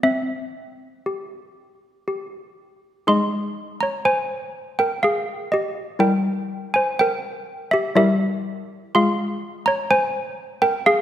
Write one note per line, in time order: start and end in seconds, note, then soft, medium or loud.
0.03 1.03 C4 medium
0.03 2.04 E5 medium
1.06 2.04 G4 medium
2.08 3.04 G4 medium
3.07 5.97 G#3 medium
3.07 5.97 D#4 soft
3.07 5.03 G#4 soft
3.07 3.78 D#5 medium
3.07 3.79 C6 loud
3.81 4.05 C#5 medium
3.81 4.06 A#5 medium
4.05 4.75 C5 medium
4.05 4.76 G#5 medium
4.79 5.02 A#4 medium
4.79 5.04 G5 medium
5.03 5.49 G#4 medium
5.03 5.50 F5 medium
5.52 5.98 G4 medium
5.52 5.99 D#5 medium
5.99 7.89 G3 medium
5.99 7.89 E4 soft
5.99 6.69 A#4 medium
5.99 6.70 G5 medium
6.74 6.97 C5 medium
6.74 6.98 G#5 medium
6.99 7.67 A#4 medium
6.99 7.68 G5 medium
7.71 7.94 G4 medium
7.71 7.95 E5 medium
7.96 8.91 G3 medium
7.96 8.91 E4 medium
7.96 8.91 G4 medium
7.96 8.91 A#4 medium
7.96 8.90 E5 loud
8.95 11.02 G#3 medium
8.95 11.02 F4 medium
8.95 10.85 G#4 soft
8.95 9.63 F5 medium
8.95 9.64 C6 medium
9.66 9.89 C#5 medium
9.66 9.90 A#5 loud
9.91 10.58 C5 medium
9.91 10.59 G#5 loud
10.62 10.84 A#4 medium
10.62 10.86 G5 loud
10.86 11.02 G#4 medium
10.86 11.02 F5 loud